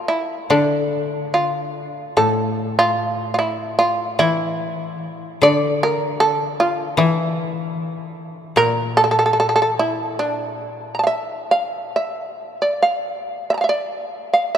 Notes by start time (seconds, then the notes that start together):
0.08 E4
0.50 D3 D4
1.34 F4
2.17 A2 A4
2.79 F4
3.34 F4
3.39 E4
3.79 F4
4.19 E3 E4
5.42 D3 D5
5.83 A#4
6.20 A4
6.60 F4
6.97 E3 E4
8.56 A#2 A#4
8.97 A4
9.04 A4
9.11 A4
9.19 A4
9.26 A4
9.33 A4
9.40 A4
9.49 A4
9.56 A4
9.62 A4
9.79 E4
10.19 D4
10.95 A#5
10.99 A5
11.03 E5 F5
11.51 F5
11.96 E5
12.62 D5
12.82 F5
13.50 E5
13.54 A5 A#5
13.61 E5 F5
13.69 D5
14.33 F5
14.55 E5